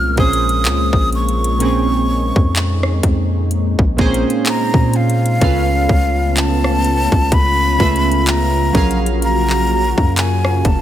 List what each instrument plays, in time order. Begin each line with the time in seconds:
Already playing: 808-style bass C2, analog synth pad C#3 G#3 A#3 F4, flute F6
0.16 808-style bass A#1, synth keys A#2 A#3 C#4 G#4 C5, flute D#6, kick, closed hi-hat
0.33 closed hi-hat
0.49 closed hi-hat
0.65 808-style bass C#2, clap, closed hi-hat
0.93 808-style bass A#1, kick
1.13 flute C#6, closed hi-hat
1.29 closed hi-hat
1.44 closed hi-hat
1.59 synth keys A#2 A#3 C4 C#4 G#4, analog synth pad D#4, closed hi-hat
2.36 808-style bass F2, kick
2.56 clap, closed hi-hat
2.83 cross-stick
3.03 808-style bass F2, kick, closed hi-hat
3.51 closed hi-hat
3.79 808-style bass A#1, kick
3.97 synth keys A#2 A#3 C4 G#4, kick, closed hi-hat
4.01 synth keys C5
4.06 synth keys C#4
4.14 closed hi-hat
4.30 closed hi-hat
4.46 flute A#5, clap, closed hi-hat
4.74 808-style bass A#2, kick
4.93 flute F5, closed hi-hat, open hi-hat
5.10 closed hi-hat
5.26 closed hi-hat
5.40 808-style bass C#2, synth keys C#3 C#4 F4 A4 B4 F5, analog synth pad C#3 A3 B3 C#4 F4, kick, closed hi-hat
5.89 808-style bass C#2, kick
6.37 flute A5, clap, closed hi-hat
6.64 cross-stick
6.84 closed hi-hat
7.12 808-style bass C#2, kick
7.32 808-style bass C#2, flute B5, kick, closed hi-hat
7.78 808-style bass C#2, synth keys C#3 A3 C#4 F4 B4, kick, closed hi-hat
7.82 synth keys E5
7.96 closed hi-hat
8.12 closed hi-hat
8.27 flute A#5, clap, closed hi-hat
8.73 808-style bass A#1, synth keys F#3 C#4 G#4 A#4, analog synth pad F#3 A#3 F#4, kick, closed hi-hat
8.77 synth keys F5
8.91 closed hi-hat
9.06 closed hi-hat
9.22 flute A#5, closed hi-hat
9.50 clap
9.98 808-style bass F#2, kick
10.17 flute G#5, clap, closed hi-hat
10.45 cross-stick
10.65 808-style bass F1, flute A5, kick, closed hi-hat